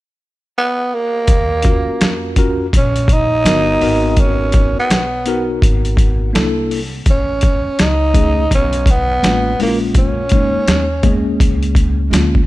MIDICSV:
0, 0, Header, 1, 6, 480
1, 0, Start_track
1, 0, Key_signature, -6, "minor"
1, 0, Tempo, 722892
1, 849, Time_signature, 4, 2, 24, 8
1, 8278, End_track
2, 0, Start_track
2, 0, Title_t, "Tine electric piano"
2, 0, Program_c, 0, 4
2, 1083, Note_on_c, 0, 61, 62
2, 1091, Note_on_c, 0, 65, 61
2, 1095, Note_on_c, 0, 66, 53
2, 1101, Note_on_c, 0, 70, 74
2, 1561, Note_off_c, 0, 61, 0
2, 1567, Note_off_c, 0, 65, 0
2, 1569, Note_on_c, 0, 61, 75
2, 1570, Note_off_c, 0, 66, 0
2, 1575, Note_on_c, 0, 65, 65
2, 1576, Note_off_c, 0, 70, 0
2, 1578, Note_on_c, 0, 66, 66
2, 1584, Note_on_c, 0, 70, 81
2, 1757, Note_off_c, 0, 61, 0
2, 1760, Note_off_c, 0, 65, 0
2, 1761, Note_off_c, 0, 66, 0
2, 1764, Note_off_c, 0, 70, 0
2, 2288, Note_on_c, 0, 59, 64
2, 2295, Note_on_c, 0, 63, 58
2, 2300, Note_on_c, 0, 66, 63
2, 2305, Note_on_c, 0, 70, 77
2, 2520, Note_off_c, 0, 59, 0
2, 2526, Note_off_c, 0, 63, 0
2, 2528, Note_on_c, 0, 59, 71
2, 2529, Note_off_c, 0, 66, 0
2, 2534, Note_on_c, 0, 63, 60
2, 2537, Note_off_c, 0, 70, 0
2, 2537, Note_on_c, 0, 66, 55
2, 2545, Note_on_c, 0, 70, 74
2, 3310, Note_off_c, 0, 59, 0
2, 3313, Note_off_c, 0, 63, 0
2, 3314, Note_off_c, 0, 66, 0
2, 3318, Note_off_c, 0, 70, 0
2, 3492, Note_on_c, 0, 59, 65
2, 3497, Note_on_c, 0, 63, 67
2, 3503, Note_on_c, 0, 66, 70
2, 3506, Note_on_c, 0, 70, 88
2, 4176, Note_off_c, 0, 59, 0
2, 4178, Note_off_c, 0, 63, 0
2, 4181, Note_off_c, 0, 66, 0
2, 4183, Note_off_c, 0, 70, 0
2, 4203, Note_on_c, 0, 58, 69
2, 4208, Note_on_c, 0, 62, 64
2, 4214, Note_on_c, 0, 64, 70
2, 4217, Note_on_c, 0, 69, 84
2, 4507, Note_off_c, 0, 58, 0
2, 4510, Note_off_c, 0, 62, 0
2, 4513, Note_off_c, 0, 64, 0
2, 4514, Note_off_c, 0, 69, 0
2, 5402, Note_on_c, 0, 57, 80
2, 5405, Note_on_c, 0, 61, 62
2, 5412, Note_on_c, 0, 63, 65
2, 5418, Note_on_c, 0, 68, 92
2, 5593, Note_off_c, 0, 57, 0
2, 5595, Note_off_c, 0, 61, 0
2, 5599, Note_off_c, 0, 63, 0
2, 5601, Note_off_c, 0, 68, 0
2, 6126, Note_on_c, 0, 56, 62
2, 6129, Note_on_c, 0, 58, 58
2, 6137, Note_on_c, 0, 61, 56
2, 6142, Note_on_c, 0, 65, 73
2, 6315, Note_off_c, 0, 56, 0
2, 6317, Note_off_c, 0, 58, 0
2, 6321, Note_off_c, 0, 61, 0
2, 6323, Note_off_c, 0, 65, 0
2, 6368, Note_on_c, 0, 56, 74
2, 6376, Note_on_c, 0, 58, 60
2, 6382, Note_on_c, 0, 61, 70
2, 6385, Note_on_c, 0, 64, 65
2, 6427, Note_on_c, 0, 65, 80
2, 6432, Note_off_c, 0, 64, 0
2, 6779, Note_off_c, 0, 56, 0
2, 6783, Note_off_c, 0, 58, 0
2, 6786, Note_off_c, 0, 61, 0
2, 6809, Note_off_c, 0, 65, 0
2, 6849, Note_on_c, 0, 56, 69
2, 6853, Note_on_c, 0, 58, 58
2, 6858, Note_on_c, 0, 61, 50
2, 6867, Note_on_c, 0, 63, 65
2, 7211, Note_off_c, 0, 56, 0
2, 7214, Note_off_c, 0, 58, 0
2, 7216, Note_off_c, 0, 61, 0
2, 7221, Note_off_c, 0, 63, 0
2, 7325, Note_on_c, 0, 56, 89
2, 7328, Note_on_c, 0, 58, 70
2, 7334, Note_on_c, 0, 59, 67
2, 7342, Note_on_c, 0, 68, 85
2, 7381, Note_on_c, 0, 61, 81
2, 7387, Note_off_c, 0, 59, 0
2, 8012, Note_off_c, 0, 56, 0
2, 8014, Note_off_c, 0, 58, 0
2, 8021, Note_off_c, 0, 68, 0
2, 8038, Note_off_c, 0, 61, 0
2, 8038, Note_on_c, 0, 56, 68
2, 8045, Note_on_c, 0, 58, 58
2, 8046, Note_on_c, 0, 61, 65
2, 8052, Note_on_c, 0, 65, 79
2, 8231, Note_off_c, 0, 56, 0
2, 8235, Note_off_c, 0, 58, 0
2, 8236, Note_off_c, 0, 61, 0
2, 8239, Note_off_c, 0, 65, 0
2, 8278, End_track
3, 0, Start_track
3, 0, Title_t, "Tenor saxophone"
3, 0, Program_c, 1, 66
3, 385, Note_on_c, 1, 59, 95
3, 628, Note_on_c, 1, 58, 93
3, 638, Note_off_c, 1, 59, 0
3, 1578, Note_off_c, 1, 58, 0
3, 1841, Note_on_c, 1, 61, 89
3, 2074, Note_on_c, 1, 63, 112
3, 2084, Note_off_c, 1, 61, 0
3, 2762, Note_off_c, 1, 63, 0
3, 2762, Note_on_c, 1, 63, 65
3, 2787, Note_on_c, 1, 61, 89
3, 2797, Note_off_c, 1, 63, 0
3, 3171, Note_off_c, 1, 61, 0
3, 3184, Note_on_c, 1, 59, 78
3, 3627, Note_off_c, 1, 59, 0
3, 4717, Note_on_c, 1, 61, 88
3, 5192, Note_on_c, 1, 63, 100
3, 5202, Note_off_c, 1, 61, 0
3, 5661, Note_off_c, 1, 63, 0
3, 5674, Note_on_c, 1, 61, 88
3, 5915, Note_on_c, 1, 59, 101
3, 5925, Note_off_c, 1, 61, 0
3, 6382, Note_off_c, 1, 59, 0
3, 6392, Note_on_c, 1, 58, 72
3, 6495, Note_off_c, 1, 58, 0
3, 6629, Note_on_c, 1, 61, 85
3, 7552, Note_off_c, 1, 61, 0
3, 8278, End_track
4, 0, Start_track
4, 0, Title_t, "Upright bass"
4, 0, Program_c, 2, 32
4, 851, Note_on_c, 2, 39, 81
4, 1224, Note_off_c, 2, 39, 0
4, 1333, Note_on_c, 2, 41, 77
4, 1787, Note_off_c, 2, 41, 0
4, 1816, Note_on_c, 2, 34, 96
4, 2269, Note_off_c, 2, 34, 0
4, 2290, Note_on_c, 2, 31, 95
4, 2517, Note_off_c, 2, 31, 0
4, 2533, Note_on_c, 2, 32, 83
4, 3138, Note_off_c, 2, 32, 0
4, 3254, Note_on_c, 2, 35, 73
4, 3707, Note_off_c, 2, 35, 0
4, 3732, Note_on_c, 2, 32, 91
4, 4186, Note_off_c, 2, 32, 0
4, 4216, Note_on_c, 2, 36, 86
4, 4669, Note_off_c, 2, 36, 0
4, 4690, Note_on_c, 2, 33, 85
4, 5063, Note_off_c, 2, 33, 0
4, 5177, Note_on_c, 2, 37, 77
4, 5629, Note_off_c, 2, 37, 0
4, 5652, Note_on_c, 2, 35, 101
4, 6106, Note_off_c, 2, 35, 0
4, 6128, Note_on_c, 2, 33, 90
4, 6356, Note_off_c, 2, 33, 0
4, 6371, Note_on_c, 2, 34, 79
4, 6977, Note_off_c, 2, 34, 0
4, 7088, Note_on_c, 2, 39, 73
4, 7544, Note_off_c, 2, 39, 0
4, 7571, Note_on_c, 2, 37, 88
4, 8026, Note_off_c, 2, 37, 0
4, 8041, Note_on_c, 2, 38, 76
4, 8278, Note_off_c, 2, 38, 0
4, 8278, End_track
5, 0, Start_track
5, 0, Title_t, "Muted upright bass strokes"
5, 1243, Note_on_c, 9, 29, 40
5, 1309, Note_off_c, 9, 29, 0
5, 3166, Note_on_c, 9, 29, 43
5, 3233, Note_off_c, 9, 29, 0
5, 5085, Note_on_c, 9, 29, 44
5, 5152, Note_off_c, 9, 29, 0
5, 7003, Note_on_c, 9, 29, 45
5, 7069, Note_off_c, 9, 29, 0
5, 8278, End_track
6, 0, Start_track
6, 0, Title_t, "Drums"
6, 847, Note_on_c, 9, 42, 68
6, 849, Note_on_c, 9, 36, 108
6, 913, Note_off_c, 9, 42, 0
6, 916, Note_off_c, 9, 36, 0
6, 1078, Note_on_c, 9, 42, 72
6, 1094, Note_on_c, 9, 36, 88
6, 1145, Note_off_c, 9, 42, 0
6, 1160, Note_off_c, 9, 36, 0
6, 1333, Note_on_c, 9, 42, 73
6, 1338, Note_on_c, 9, 38, 95
6, 1399, Note_off_c, 9, 42, 0
6, 1404, Note_off_c, 9, 38, 0
6, 1568, Note_on_c, 9, 42, 70
6, 1569, Note_on_c, 9, 36, 79
6, 1634, Note_off_c, 9, 42, 0
6, 1636, Note_off_c, 9, 36, 0
6, 1814, Note_on_c, 9, 36, 89
6, 1817, Note_on_c, 9, 42, 82
6, 1880, Note_off_c, 9, 36, 0
6, 1884, Note_off_c, 9, 42, 0
6, 1963, Note_on_c, 9, 42, 50
6, 2029, Note_off_c, 9, 42, 0
6, 2045, Note_on_c, 9, 36, 98
6, 2053, Note_on_c, 9, 42, 70
6, 2111, Note_off_c, 9, 36, 0
6, 2119, Note_off_c, 9, 42, 0
6, 2295, Note_on_c, 9, 42, 83
6, 2298, Note_on_c, 9, 38, 100
6, 2361, Note_off_c, 9, 42, 0
6, 2365, Note_off_c, 9, 38, 0
6, 2532, Note_on_c, 9, 46, 48
6, 2599, Note_off_c, 9, 46, 0
6, 2766, Note_on_c, 9, 42, 65
6, 2768, Note_on_c, 9, 36, 93
6, 2832, Note_off_c, 9, 42, 0
6, 2835, Note_off_c, 9, 36, 0
6, 3003, Note_on_c, 9, 42, 67
6, 3014, Note_on_c, 9, 36, 89
6, 3070, Note_off_c, 9, 42, 0
6, 3080, Note_off_c, 9, 36, 0
6, 3257, Note_on_c, 9, 42, 76
6, 3261, Note_on_c, 9, 38, 95
6, 3323, Note_off_c, 9, 42, 0
6, 3328, Note_off_c, 9, 38, 0
6, 3490, Note_on_c, 9, 42, 64
6, 3557, Note_off_c, 9, 42, 0
6, 3733, Note_on_c, 9, 36, 95
6, 3741, Note_on_c, 9, 42, 84
6, 3800, Note_off_c, 9, 36, 0
6, 3807, Note_off_c, 9, 42, 0
6, 3884, Note_on_c, 9, 42, 44
6, 3950, Note_off_c, 9, 42, 0
6, 3965, Note_on_c, 9, 36, 94
6, 3974, Note_on_c, 9, 42, 63
6, 4031, Note_off_c, 9, 36, 0
6, 4040, Note_off_c, 9, 42, 0
6, 4218, Note_on_c, 9, 42, 75
6, 4221, Note_on_c, 9, 38, 111
6, 4284, Note_off_c, 9, 42, 0
6, 4288, Note_off_c, 9, 38, 0
6, 4457, Note_on_c, 9, 46, 44
6, 4524, Note_off_c, 9, 46, 0
6, 4687, Note_on_c, 9, 42, 62
6, 4689, Note_on_c, 9, 36, 99
6, 4753, Note_off_c, 9, 42, 0
6, 4755, Note_off_c, 9, 36, 0
6, 4921, Note_on_c, 9, 42, 69
6, 4933, Note_on_c, 9, 36, 95
6, 4987, Note_off_c, 9, 42, 0
6, 5000, Note_off_c, 9, 36, 0
6, 5171, Note_on_c, 9, 42, 78
6, 5176, Note_on_c, 9, 38, 99
6, 5238, Note_off_c, 9, 42, 0
6, 5242, Note_off_c, 9, 38, 0
6, 5408, Note_on_c, 9, 36, 97
6, 5408, Note_on_c, 9, 42, 68
6, 5475, Note_off_c, 9, 36, 0
6, 5475, Note_off_c, 9, 42, 0
6, 5651, Note_on_c, 9, 36, 90
6, 5655, Note_on_c, 9, 42, 80
6, 5718, Note_off_c, 9, 36, 0
6, 5722, Note_off_c, 9, 42, 0
6, 5795, Note_on_c, 9, 42, 51
6, 5861, Note_off_c, 9, 42, 0
6, 5882, Note_on_c, 9, 36, 100
6, 5889, Note_on_c, 9, 42, 72
6, 5949, Note_off_c, 9, 36, 0
6, 5956, Note_off_c, 9, 42, 0
6, 6133, Note_on_c, 9, 42, 73
6, 6137, Note_on_c, 9, 38, 96
6, 6200, Note_off_c, 9, 42, 0
6, 6203, Note_off_c, 9, 38, 0
6, 6373, Note_on_c, 9, 46, 54
6, 6439, Note_off_c, 9, 46, 0
6, 6603, Note_on_c, 9, 42, 61
6, 6606, Note_on_c, 9, 36, 94
6, 6670, Note_off_c, 9, 42, 0
6, 6673, Note_off_c, 9, 36, 0
6, 6835, Note_on_c, 9, 42, 65
6, 6851, Note_on_c, 9, 36, 87
6, 6901, Note_off_c, 9, 42, 0
6, 6917, Note_off_c, 9, 36, 0
6, 7088, Note_on_c, 9, 42, 85
6, 7093, Note_on_c, 9, 38, 100
6, 7155, Note_off_c, 9, 42, 0
6, 7160, Note_off_c, 9, 38, 0
6, 7325, Note_on_c, 9, 42, 61
6, 7327, Note_on_c, 9, 36, 97
6, 7391, Note_off_c, 9, 42, 0
6, 7393, Note_off_c, 9, 36, 0
6, 7571, Note_on_c, 9, 36, 100
6, 7575, Note_on_c, 9, 42, 85
6, 7637, Note_off_c, 9, 36, 0
6, 7641, Note_off_c, 9, 42, 0
6, 7719, Note_on_c, 9, 42, 47
6, 7786, Note_off_c, 9, 42, 0
6, 7802, Note_on_c, 9, 36, 91
6, 7811, Note_on_c, 9, 42, 65
6, 7868, Note_off_c, 9, 36, 0
6, 7877, Note_off_c, 9, 42, 0
6, 8055, Note_on_c, 9, 42, 83
6, 8058, Note_on_c, 9, 38, 98
6, 8121, Note_off_c, 9, 42, 0
6, 8125, Note_off_c, 9, 38, 0
6, 8200, Note_on_c, 9, 36, 79
6, 8266, Note_off_c, 9, 36, 0
6, 8278, End_track
0, 0, End_of_file